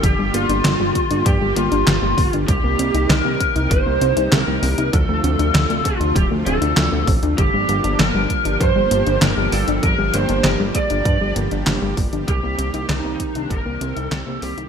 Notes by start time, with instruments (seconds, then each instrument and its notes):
Already playing: supersaw synth D3 G3 A#3 F4 G4
0.03 analog synth bass G1, synth arpeggio sound F3, lead electric guitar G4, kick, closed hi-hat
0.19 analog synth bass G1, synth arpeggio sound G3
0.34 analog synth bass G1, synth arpeggio sound A#3, lead electric guitar F4, closed hi-hat
0.49 analog synth bass G1, synth arpeggio sound D4, closed hi-hat
0.64 analog synth bass G1, synth arpeggio sound F3, snare, clap, closed hi-hat
0.80 analog synth bass G1, synth arpeggio sound G3
0.95 synth arpeggio sound A#3, kick, closed hi-hat
1.10 analog synth bass G1, synth arpeggio sound D4, closed hi-hat
1.26 analog synth bass G2, synth arpeggio sound F3, lead electric guitar G4, kick, closed hi-hat
1.41 analog synth bass G1, synth arpeggio sound G3
1.56 analog synth bass G1, synth arpeggio sound A#3, lead electric guitar F4, closed hi-hat
1.72 analog synth bass G1, synth arpeggio sound D4, closed hi-hat
1.87 analog synth bass G1, synth arpeggio sound F3, lead electric guitar F4, snare, clap, closed hi-hat
2.02 analog synth bass G1, synth arpeggio sound G3
2.18 analog synth bass G1, synth arpeggio sound A#3, kick, open hi-hat
2.33 analog synth bass G1, synth arpeggio sound D4, closed hi-hat
2.48 analog synth bass C2, supersaw synth C3 D#4, synth arpeggio sound G3, lead electric guitar G4, kick, closed hi-hat
2.64 analog synth bass C2, synth arpeggio sound A#3
2.79 analog synth bass C2, synth arpeggio sound C4, closed hi-hat
2.94 analog synth bass C2, synth arpeggio sound D#4, closed hi-hat
3.09 analog synth bass C2, synth arpeggio sound G3, lead electric guitar A#4, snare, clap, closed hi-hat
3.25 analog synth bass C2, synth arpeggio sound A#3
3.40 synth arpeggio sound C4, kick, closed hi-hat
3.56 analog synth bass C2, synth arpeggio sound D#4, closed hi-hat
3.71 analog synth bass G1, synth arpeggio sound G3, lead electric guitar C5, kick, closed hi-hat
3.86 analog synth bass C2, synth arpeggio sound A#3
4.01 analog synth bass C2, synth arpeggio sound C4, closed hi-hat
4.17 analog synth bass C2, synth arpeggio sound D#4, closed hi-hat
4.32 analog synth bass C2, synth arpeggio sound G3, lead electric guitar A#4, snare, clap, closed hi-hat
4.47 analog synth bass C2, synth arpeggio sound A#3
4.63 analog synth bass C2, synth arpeggio sound C4, open hi-hat
4.78 analog synth bass C2, synth arpeggio sound D#4, closed hi-hat
4.93 analog synth bass D2, supersaw synth C3 F3 A3 D4 F4, synth arpeggio sound F3, lead electric guitar A4, kick, closed hi-hat
5.09 analog synth bass D2, synth arpeggio sound A3
5.24 analog synth bass D2, synth arpeggio sound C4, closed hi-hat
5.39 analog synth bass D2, synth arpeggio sound D4, closed hi-hat
5.54 analog synth bass D2, synth arpeggio sound F3, snare, clap, closed hi-hat
5.70 analog synth bass D2, synth arpeggio sound A3, closed hi-hat
5.85 synth arpeggio sound C4, lead electric guitar F4, kick, closed hi-hat
6.00 analog synth bass D2, synth arpeggio sound D4, closed hi-hat
6.16 analog synth bass D1, synth arpeggio sound F3, lead electric guitar G4, kick, closed hi-hat
6.31 analog synth bass D2, synth arpeggio sound A3
6.46 analog synth bass D1, synth arpeggio sound C4, lead electric guitar A4, closed hi-hat
6.61 analog synth bass D2, synth arpeggio sound D4, closed hi-hat
6.77 analog synth bass D2, synth arpeggio sound F3, snare, clap, closed hi-hat
6.92 analog synth bass D2, synth arpeggio sound A3
7.07 analog synth bass A1, synth arpeggio sound C4, kick, open hi-hat
7.23 analog synth bass D2, synth arpeggio sound D4, closed hi-hat
7.38 analog synth bass G1, synth arpeggio sound F3, supersaw synth G3 A#3 G4, lead electric guitar G4, kick, closed hi-hat
7.54 analog synth bass G1, synth arpeggio sound G3
7.69 analog synth bass G1, synth arpeggio sound A#3, closed hi-hat
7.84 analog synth bass G1, synth arpeggio sound D4, closed hi-hat
7.99 analog synth bass G1, synth arpeggio sound F3, lead electric guitar A#4, snare, clap, closed hi-hat
8.15 analog synth bass G1, synth arpeggio sound G3
8.30 synth arpeggio sound A#3, kick, closed hi-hat
8.45 analog synth bass G1, synth arpeggio sound D4, closed hi-hat
8.60 analog synth bass G2, synth arpeggio sound F3, lead electric guitar C5, kick, closed hi-hat
8.76 analog synth bass G1, synth arpeggio sound G3
8.91 analog synth bass G1, synth arpeggio sound A#3, closed hi-hat
9.07 analog synth bass G1, synth arpeggio sound D4, closed hi-hat
9.22 analog synth bass G1, synth arpeggio sound F3, lead electric guitar A#4, snare, clap, closed hi-hat
9.37 analog synth bass G1, synth arpeggio sound G3
9.52 analog synth bass G1, synth arpeggio sound A#3, lead electric guitar A4, open hi-hat
9.68 analog synth bass G1, synth arpeggio sound D4, closed hi-hat
9.83 analog synth bass G1, synth arpeggio sound F3, lead electric guitar A#4, kick, closed hi-hat
9.98 analog synth bass G1, synth arpeggio sound G3
10.14 analog synth bass G1, synth arpeggio sound A#3, lead electric guitar C5, closed hi-hat
10.29 analog synth bass G1, synth arpeggio sound D4, closed hi-hat
10.44 analog synth bass G1, synth arpeggio sound F3, lead electric guitar A#4, snare, clap, closed hi-hat
10.60 analog synth bass G1, synth arpeggio sound G3
10.75 synth arpeggio sound A#3, lead electric guitar D5, kick, closed hi-hat
10.90 analog synth bass G1, synth arpeggio sound D4, closed hi-hat
11.05 analog synth bass G2, synth arpeggio sound F3, kick, closed hi-hat
11.21 analog synth bass G1, synth arpeggio sound G3
11.36 analog synth bass G1, synth arpeggio sound A#3, closed hi-hat
11.51 analog synth bass G1, synth arpeggio sound D4, closed hi-hat
11.67 analog synth bass G1, synth arpeggio sound F3, snare, clap, closed hi-hat
11.82 analog synth bass G1, synth arpeggio sound G3
11.97 analog synth bass G1, synth arpeggio sound A#3, kick, open hi-hat
12.13 analog synth bass G1, synth arpeggio sound D4, closed hi-hat
12.28 analog synth bass C2, supersaw synth D#3 A#3 C4, synth arpeggio sound G3, lead electric guitar G4, kick, closed hi-hat
12.43 analog synth bass C2, synth arpeggio sound A#3
12.58 analog synth bass C2, synth arpeggio sound C4, closed hi-hat
12.74 analog synth bass C2, synth arpeggio sound D#4, closed hi-hat
12.89 analog synth bass C2, synth arpeggio sound G3, lead electric guitar D#4, snare, clap, closed hi-hat
13.04 analog synth bass C2, synth arpeggio sound A#3
13.20 synth arpeggio sound C4, kick, closed hi-hat
13.35 analog synth bass C2, lead electric guitar D4, synth arpeggio sound D#4, closed hi-hat
13.50 analog synth bass G1, synth arpeggio sound G3, lead electric guitar A#4, kick, closed hi-hat
13.66 analog synth bass C2, synth arpeggio sound A#3
13.81 analog synth bass C2, synth arpeggio sound C4, closed hi-hat
13.96 analog synth bass C2, synth arpeggio sound D#4, lead electric guitar A4, closed hi-hat
14.11 analog synth bass C2, synth arpeggio sound G3, lead electric guitar A4, snare, clap, closed hi-hat
14.27 analog synth bass C2, synth arpeggio sound A#3
14.42 analog synth bass C2, synth arpeggio sound C4, lead electric guitar G4, open hi-hat
14.57 analog synth bass C2, synth arpeggio sound D#4, closed hi-hat